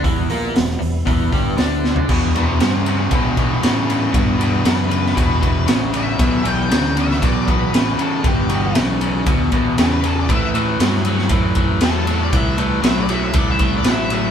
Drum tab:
CC |----------------|x---------------|----------------|----------------|
RD |----------------|--x-x-x-x-x-x-x-|x-x-x-x-x-x-x-x-|x-x-x-x-x-x-x-x-|
HH |o-o-o-o-o-o-o---|----------------|----------------|----------------|
SD |----oo------o-o-|----o-------o---|----o--o----o---|----oo-o----o---|
FT |---------------o|----------------|----------------|----------------|
BD |o-------o-o-----|o-------o-o-----|o-------o-o-----|o-------o-o-----|

CC |----------------|----------------|----------------|
RD |x-x-x-x-x-x-x-x-|x-x-x-x-x-x-x-x-|x-x-x-x-x-x-x-x-|
HH |----------------|----------------|----------------|
SD |----o-------o---|----oo-o----o---|----o-------o---|
FT |----------------|----------------|----------------|
BD |o-------o-o-----|o-------o-o-----|o-------o-o-----|